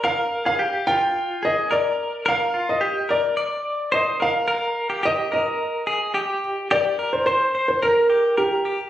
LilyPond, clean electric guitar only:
\new Staff \with { instrumentName = "Clean electric guitar" } { \time 4/4 \key f \dorian \tempo 4 = 108 bes'8. aes'16 g'8 f'4 aes'8 bes'4 | bes'8 f'8 g'8 bes'8 d''4 c''8 bes'8 | bes'8. g'16 g'8 bes'4 aes'8 g'4 | g'8 bes'8 c''8 c''8 bes'8 g'8 bes'8 g'8 | }